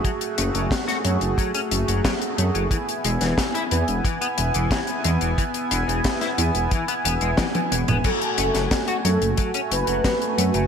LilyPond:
<<
  \new Staff \with { instrumentName = "Analog synth lead" } { \time 4/4 \key fis \minor \tempo 4 = 90 r1 | r1 | r1 | a'4. a'8 r8 b'4. | }
  \new Staff \with { instrumentName = "Analog synth pad" } { \time 4/4 \key fis \minor << { gis'1 | gis''1~ | gis''1~ | gis''1 | } \\ { <a fis'>1 | <b e'>1~ | <b e'>1 | <a fis'>1 | } >> }
  \new Staff \with { instrumentName = "Clean electric guitar" } { \clef bass \time 4/4 \key fis \minor fis16 r16 a16 fis16 r16 fis'16 fis16 r16 fis16 cis'16 r16 fis16 fis16 r16 a16 fis16 | e16 r16 gis16 e16 r16 e'16 e16 r16 e16 b16 r16 e16 e16 r16 gis16 e16 | e16 r16 gis16 e16 r16 e'16 e16 r16 e16 b16 b16 gis16 e16 e16 e16 b16 | fis16 r16 a16 fis16 r16 fis'16 fis16 r16 fis16 cis'16 r16 fis16 fis16 r16 a16 fis16 | }
  \new Staff \with { instrumentName = "Detuned saw bass" } { \clef bass \time 4/4 \key fis \minor r8 fis,,16 fis,,16 r8 fis,16 fis,,16 r8 fis,,16 fis,,16 r8 fis,16 fis,,16 | r8 e,,16 e,,16 r8 e,16 e,,16 r8 e,,16 e,,16 r8 e,16 e,,16 | r8 e,,16 e,,16 r8 e,16 e,,16 r8 e,,16 e,,16 r8 e,,16 e,,16 | r8 fis,,16 fis,,16 r8 fis,16 fis,,16 r8 fis,,16 fis,,16 r8 fis,16 fis,,16 | }
  \new DrumStaff \with { instrumentName = "Drums" } \drummode { \time 4/4 <hh bd>16 hh16 hh16 hh16 <hh bd sn>16 <hh sn>16 hh16 hh16 <hh bd>16 hh16 hh16 hh16 <hh bd sn>16 hh16 hh16 hh16 | <hh bd>16 hh16 hh16 <hh sn>16 <hh bd sn>16 hh16 hh16 hh16 <hh bd>16 hh16 hh16 hh16 <hh bd sn>16 hh16 hh16 hh16 | <hh bd>16 hh16 hh16 hh16 <hh bd sn>16 <hh sn>16 hh16 hh16 <hh bd>16 hh16 hh16 hh16 <hh bd sn tommh>16 <hh tommh>16 hh16 <hh toml>16 | <cymc hh bd>16 hh16 hh16 <hh sn>16 <hh bd sn>16 hh16 hh16 hh16 <hh bd>16 hh16 hh16 hh16 <hh bd sn>16 hh16 hh16 hh16 | }
>>